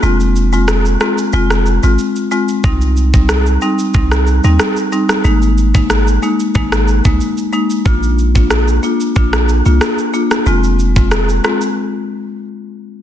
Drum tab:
SH |xxxxxxxxxxxxxxxx|xxxxxxxxxxxxxxxx|xxxxxxxxxxxxxxxx|xxxxxxxxxxxxxxxx|
SD |----r-r--r------|----r----r--r--r|----r----r------|----r----r--r--r|
BD |----------------|o--o----o-------|---o----o--o----|o--o----o-------|

SH |xxxxxxxx--------|
SD |----r-r---------|
BD |---o------------|